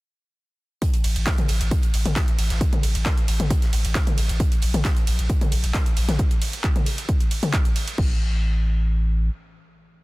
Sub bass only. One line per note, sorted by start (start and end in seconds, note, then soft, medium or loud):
1.04 1.15 A1 loud
1.16 1.26 A1 medium
1.49 1.60 A1 loud
1.61 1.71 A1 medium
1.94 2.05 A1 loud
2.06 2.16 A1 medium
2.39 2.50 A1 loud
2.50 2.61 A1 medium
2.83 2.94 A1 loud
2.95 3.06 A1 medium
3.28 3.39 A1 loud
3.40 3.50 A1 medium
3.73 3.84 A1 loud
3.85 3.95 A1 medium
4.18 4.29 A1 loud
4.29 4.40 A1 medium
4.62 4.74 A#1 loud
4.74 4.85 A#1 medium
5.07 5.18 A#1 loud
5.19 5.29 A#1 medium
5.52 5.63 A#1 loud
5.64 5.74 A#1 medium
5.97 6.08 A#1 loud
6.09 6.19 A#1 medium
7.98 9.29 A1 medium